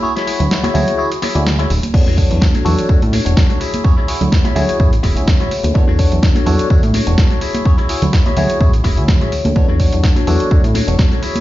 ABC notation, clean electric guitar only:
X:1
M:4/4
L:1/16
Q:"Swing 16ths" 1/4=126
K:Emix
V:1 name="Clean electric guitar"
z [EFGc]2 z2 [EFGc] z4 [EFGc]2 z [EFGc] z2 | z [DFAc]2 z2 [DFAc] z4 [DFAc]2 z [DFAc] [EFGc]2 | z [EFGc]2 z2 [EFGc] z4 [EFGc]2 z [EFGc] z2 | z [DFAc]2 z2 [DFAc] z4 [DFAc]2 z [DFAc] [EFGc]2 |
z [EFGc]2 z2 [EFGc] z4 [EFGc]2 z [EFGc] z2 | z [DFAc]2 z2 [DFAc] z4 [DFAc]2 z [DFAc] [EFGc]2 |]